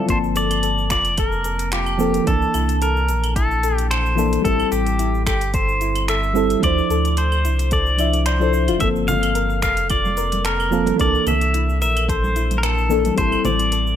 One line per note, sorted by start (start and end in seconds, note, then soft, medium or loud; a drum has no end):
0.00 0.10 C4 medium
0.00 0.10 F4 medium
0.06 0.92 G1 loud
0.06 1.95 F3 medium
0.06 1.96 A#3 medium
0.06 1.97 C4 medium
0.06 0.16 F4 medium
0.06 kick loud
0.06 closed hi-hat medium
0.06 shaker soft
0.10 0.17 C5 loud
0.10 1.98 A5 loud
0.24 shaker soft
0.36 0.50 A4 medium
0.36 0.90 D5 medium
0.36 closed hi-hat soft
0.36 shaker medium
0.51 closed hi-hat soft
0.51 claves medium
0.51 shaker soft
0.63 0.71 A4 medium
0.63 closed hi-hat medium
0.63 shaker soft
0.78 shaker soft
0.90 2.20 F1 medium
0.90 0.99 F4 medium
0.90 1.19 D5 medium
0.90 finger snap medium
0.90 kick loud
0.90 closed hi-hat soft
0.90 shaker medium
1.05 closed hi-hat soft
1.05 shaker soft
1.18 1.32 A4 medium
1.18 1.75 A#4 medium
1.18 kick loud
1.18 closed hi-hat medium
1.18 claves medium
1.18 shaker soft
1.32 shaker soft
1.44 1.53 A4 medium
1.44 closed hi-hat soft
1.44 shaker medium
1.59 closed hi-hat soft
1.59 shaker soft
1.72 1.80 F4 medium
1.72 2.29 G4 medium
1.72 finger snap medium
1.72 closed hi-hat medium
1.72 shaker soft
1.86 claves medium
1.86 shaker soft
1.98 2.23 F3 loud
1.98 2.23 A#3 medium
1.98 2.24 C4 medium
1.98 2.14 A4 medium
1.98 2.24 A4 loud
1.98 shaker medium
2.14 closed hi-hat soft
2.14 shaker soft
2.24 2.45 C2 loud
2.24 4.13 E3 medium
2.24 4.14 A#3 medium
2.24 4.15 D4 medium
2.24 2.82 A4 loud
2.24 2.35 A4 medium
2.24 kick loud
2.24 closed hi-hat medium
2.24 shaker soft
2.30 4.16 A5 loud
2.42 shaker soft
2.54 3.11 C2 medium
2.54 2.62 E4 medium
2.54 closed hi-hat soft
2.54 claves medium
2.54 shaker medium
2.69 closed hi-hat soft
2.69 shaker soft
2.82 2.95 A4 medium
2.82 3.36 A#4 loud
2.82 closed hi-hat medium
2.82 shaker soft
2.97 shaker soft
3.09 4.38 A#1 medium
3.09 3.17 A4 medium
3.09 closed hi-hat soft
3.09 shaker medium
3.24 closed hi-hat soft
3.24 claves medium
3.24 shaker soft
3.36 3.44 E4 medium
3.36 3.87 A4 medium
3.36 kick loud
3.36 closed hi-hat medium
3.36 shaker soft
3.51 shaker soft
3.63 3.77 A4 medium
3.63 closed hi-hat soft
3.63 shaker medium
3.78 closed hi-hat soft
3.78 shaker soft
3.91 3.98 A4 medium
3.91 4.44 C5 loud
3.91 finger snap medium
3.91 closed hi-hat medium
3.91 claves medium
3.91 shaker soft
4.06 shaker soft
4.16 4.41 E3 loud
4.16 4.41 A#3 medium
4.16 4.42 D4 medium
4.16 4.26 E4 medium
4.16 4.42 A4 loud
4.16 shaker medium
4.33 closed hi-hat soft
4.33 shaker soft
4.42 4.63 A1 loud
4.42 6.31 G3 medium
4.42 6.32 C4 medium
4.42 4.73 A4 loud
4.42 4.59 A4 medium
4.42 kick loud
4.42 closed hi-hat medium
4.42 shaker soft
4.46 6.33 E4 medium
4.46 6.34 A4 loud
4.60 claves medium
4.60 shaker soft
4.72 5.28 A1 loud
4.72 5.23 G4 medium
4.72 4.80 A4 medium
4.72 closed hi-hat soft
4.72 shaker medium
4.87 closed hi-hat soft
4.87 shaker soft
4.99 5.07 E4 medium
4.99 closed hi-hat medium
4.99 shaker soft
5.15 shaker soft
5.26 6.56 G1 medium
5.26 5.55 G4 loud
5.26 5.41 A4 medium
5.26 finger snap medium
5.26 kick loud
5.26 closed hi-hat soft
5.26 claves medium
5.26 shaker medium
5.41 closed hi-hat soft
5.41 shaker soft
5.54 5.62 A4 medium
5.54 6.10 C5 loud
5.54 kick loud
5.54 closed hi-hat medium
5.54 shaker soft
5.69 shaker soft
5.81 5.89 E4 medium
5.81 closed hi-hat soft
5.81 shaker medium
5.95 closed hi-hat soft
5.95 claves medium
5.95 shaker soft
6.08 6.23 A4 medium
6.08 6.63 E5 loud
6.08 finger snap medium
6.08 closed hi-hat medium
6.08 shaker soft
6.23 shaker soft
6.34 6.59 G3 medium
6.34 6.59 C4 medium
6.34 6.60 E4 medium
6.34 6.44 A4 medium
6.34 6.60 A4 loud
6.34 shaker medium
6.50 closed hi-hat soft
6.50 shaker soft
6.60 6.81 D2 loud
6.60 7.95 F3 medium
6.60 7.96 D4 medium
6.60 6.71 E4 medium
6.60 7.97 E4 medium
6.60 kick loud
6.60 closed hi-hat medium
6.60 claves medium
6.60 shaker soft
6.64 7.98 C5 loud
6.64 7.20 D5 loud
6.78 shaker soft
6.90 7.46 D2 medium
6.90 7.04 A4 medium
6.90 closed hi-hat soft
6.90 shaker medium
7.05 closed hi-hat soft
7.05 shaker soft
7.17 7.25 A4 medium
7.17 7.72 C5 loud
7.17 closed hi-hat medium
7.17 shaker soft
7.32 claves medium
7.32 shaker soft
7.45 8.70 C2 medium
7.45 7.53 E4 medium
7.45 closed hi-hat soft
7.45 shaker medium
7.59 closed hi-hat soft
7.59 shaker soft
7.71 7.86 A4 medium
7.71 8.23 D5 loud
7.71 kick loud
7.71 closed hi-hat medium
7.71 shaker soft
7.86 shaker soft
7.97 8.37 F3 medium
7.97 8.37 D4 medium
7.97 8.38 E4 medium
7.97 8.13 D5 medium
7.97 8.38 E5 medium
7.97 closed hi-hat soft
7.97 claves medium
7.97 shaker medium
8.13 closed hi-hat soft
8.13 shaker soft
8.26 8.83 C5 loud
8.26 8.40 D5 medium
8.26 finger snap medium
8.26 closed hi-hat medium
8.26 shaker soft
8.40 8.52 F3 medium
8.40 8.52 D4 medium
8.40 8.53 E4 medium
8.40 8.48 A4 medium
8.40 8.53 C5 medium
8.40 shaker soft
8.53 8.67 C5 loud
8.53 shaker medium
8.68 8.77 D1 medium
8.68 8.80 F4 loud
8.68 closed hi-hat soft
8.68 claves medium
8.68 shaker soft
8.78 9.64 G1 loud
8.78 10.68 F3 medium
8.78 10.69 A#3 medium
8.78 10.70 C4 medium
8.78 8.89 A4 medium
8.78 8.88 E5 loud
8.78 kick loud
8.78 closed hi-hat medium
8.78 shaker soft
8.84 10.71 A4 loud
8.96 shaker soft
9.08 9.16 F4 medium
9.08 9.62 F5 loud
9.08 closed hi-hat soft
9.08 low conga medium
9.08 shaker medium
9.23 closed hi-hat soft
9.23 claves medium
9.23 shaker soft
9.35 9.43 A#4 loud
9.35 closed hi-hat medium
9.35 shaker soft
9.50 shaker soft
9.62 10.92 F1 medium
9.62 9.71 A4 medium
9.62 9.90 F5 loud
9.62 finger snap medium
9.62 kick loud
9.62 closed hi-hat soft
9.62 shaker medium
9.77 closed hi-hat soft
9.77 shaker soft
9.90 9.98 F4 medium
9.90 10.47 D5 loud
9.90 kick loud
9.90 closed hi-hat medium
9.90 claves medium
9.90 shaker soft
10.05 high conga medium
10.05 shaker soft
10.17 10.25 A#4 loud
10.17 closed hi-hat soft
10.17 shaker medium
10.32 closed hi-hat soft
10.32 high conga medium
10.32 shaker soft
10.45 10.53 A4 medium
10.45 10.96 A#4 loud
10.45 finger snap medium
10.45 closed hi-hat medium
10.45 shaker soft
10.60 claves medium
10.60 shaker soft
10.71 10.96 F3 medium
10.71 10.96 A#3 medium
10.71 10.96 C4 medium
10.71 10.80 F4 medium
10.71 10.97 A4 loud
10.71 shaker medium
10.86 closed hi-hat soft
10.86 high conga medium
10.86 shaker soft
10.96 11.18 C2 medium
10.96 12.86 E3 medium
10.96 12.86 A#3 medium
10.96 12.87 D4 medium
10.96 11.07 A#4 loud
10.96 kick loud
10.96 closed hi-hat medium
10.96 shaker soft
11.01 12.89 A4 loud
11.01 11.25 D5 loud
11.15 shaker soft
11.26 11.83 C2 medium
11.26 11.35 A4 medium
11.26 11.81 E5 loud
11.26 closed hi-hat soft
11.26 low conga medium
11.26 claves medium
11.26 shaker medium
11.41 closed hi-hat soft
11.41 shaker soft
11.54 11.62 E4 medium
11.54 closed hi-hat medium
11.54 shaker soft
11.69 shaker soft
11.81 13.11 A#1 medium
11.81 11.89 A#4 loud
11.81 12.10 E5 loud
11.81 closed hi-hat soft
11.81 shaker medium
11.97 closed hi-hat soft
11.97 claves medium
11.97 shaker soft
12.09 12.17 A4 medium
12.09 12.58 C5 loud
12.09 kick loud
12.09 closed hi-hat medium
12.09 shaker soft
12.24 high conga medium
12.24 shaker soft
12.36 12.44 E4 medium
12.36 closed hi-hat soft
12.36 shaker medium
12.51 closed hi-hat soft
12.51 high conga medium
12.51 shaker soft
12.58 12.64 A#4 medium
12.63 13.14 A4 medium
12.63 12.71 A#4 loud
12.63 finger snap medium
12.63 closed hi-hat medium
12.63 claves medium
12.63 shaker soft
12.78 shaker soft
12.89 13.14 E3 medium
12.89 13.14 A#3 medium
12.89 13.15 D4 medium
12.89 12.98 A4 medium
12.89 13.16 A4 loud
12.89 shaker medium
13.05 closed hi-hat soft
13.05 high conga medium
13.05 shaker soft
13.14 13.36 A1 loud
13.14 13.96 G3 medium
13.14 13.96 C4 medium
13.14 13.26 E4 medium
13.14 13.96 E4 medium
13.14 13.46 C5 loud
13.14 kick loud
13.14 closed hi-hat medium
13.14 shaker soft
13.20 13.96 A4 loud
13.32 claves medium
13.32 shaker soft
13.45 13.96 A1 medium
13.45 13.53 C5 loud
13.45 13.96 D5 loud
13.45 closed hi-hat soft
13.45 low conga medium
13.45 shaker medium
13.59 closed hi-hat soft
13.59 shaker soft
13.72 13.80 A4 medium
13.72 closed hi-hat medium
13.72 shaker soft
13.87 shaker soft